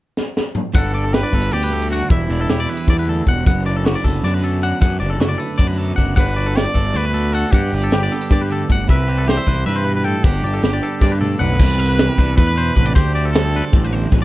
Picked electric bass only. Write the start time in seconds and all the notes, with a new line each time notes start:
0.75 G1
1.33 G1
1.53 D2
2.10 E1
2.29 E1
2.50 E1
2.88 E2
3.27 E1
3.46 F#1
4.04 F#1
4.23 F#2
4.82 F#2
5.00 F#1
5.19 F#1
5.59 F#2
5.98 F#1
6.17 G1
6.75 G1
6.94 D2
7.52 G2
7.73 G1
7.92 G1
8.31 G2
8.70 G1
8.89 C2
9.47 C2
9.67 G2
10.24 G1
10.43 G1
10.63 G1
11.01 G2
11.40 B1
11.59 C2
12.18 C2
12.37 E2
12.76 A1
12.96 D2
13.73 A1
14.12 A1